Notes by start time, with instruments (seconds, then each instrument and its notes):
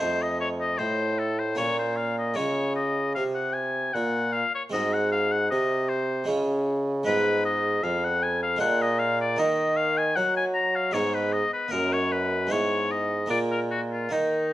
Already playing: harpsichord A3
0.00 bassoon F2, harpsichord F2 D#4 F4, oboe C5
0.22 oboe D#5
0.41 oboe C#5
0.61 oboe D#5
0.78 harpsichord A2, bassoon A2, oboe C5
1.19 oboe A4
1.39 oboe C5
1.55 bassoon A#2, harpsichord A#2 A#3 C#4 F4, oboe C#5
1.79 oboe C5
1.96 oboe F5
2.18 oboe D#5
2.34 bassoon C#3, harpsichord C#3 G#3 C#4 F4, oboe C#5
2.76 oboe D#5
3.15 bassoon C3, harpsichord C3, oboe F5
3.35 oboe F#5
3.53 oboe G#5
3.94 bassoon A#2, harpsichord A#2, oboe F#5
4.32 oboe F5
4.55 oboe C#5
4.70 bassoon G#2, harpsichord G#3 C4 F#4, oboe D#5
4.75 harpsichord G#2
4.93 oboe F#5
5.12 oboe F5
5.32 oboe F#5
5.50 bassoon C3, harpsichord C3, oboe D#5
5.89 oboe C5
6.24 bassoon C#3, harpsichord G#3 C#4 F4
6.28 harpsichord C#3
7.03 bassoon G#2, harpsichord G#3 B3 F4, oboe B4
7.07 harpsichord G#2
7.45 oboe D#5
7.83 bassoon F2, harpsichord F2, oboe F5
8.04 oboe F#5
8.23 oboe G#5
8.43 oboe F5
8.56 harpsichord G#3 A#3 D4, oboe F#5
8.61 bassoon A#2, harpsichord A#2
8.82 oboe D#5
8.99 oboe F5
9.21 oboe D5
9.36 bassoon D#3, harpsichord D#3 A#3 D#4, oboe D#5
9.77 oboe F5
9.98 oboe G#5
10.16 bassoon F#3, harpsichord F#3, oboe F#5
10.37 oboe G#5
10.54 oboe A#5
10.75 oboe F5
10.91 bassoon G#2, harpsichord G#3 B3 D#4, oboe C#5
10.96 harpsichord G#2
11.15 oboe B4
11.33 oboe D#5
11.53 oboe B4
11.68 harpsichord A#3 D#4, oboe A#4
11.72 bassoon F#2, harpsichord F#2
11.93 oboe C#5
12.12 oboe B4
12.47 bassoon G#2, harpsichord G#3 B3 E4
12.51 harpsichord G#2, oboe C#5
12.91 oboe D#5
13.26 bassoon A#2, harpsichord G#3 A#3 F4, oboe D5
13.31 harpsichord A#2
13.51 oboe A#4
13.71 oboe F#4
13.92 oboe F4
14.09 bassoon D#3, harpsichord D#3 A#3 D#4, oboe D#4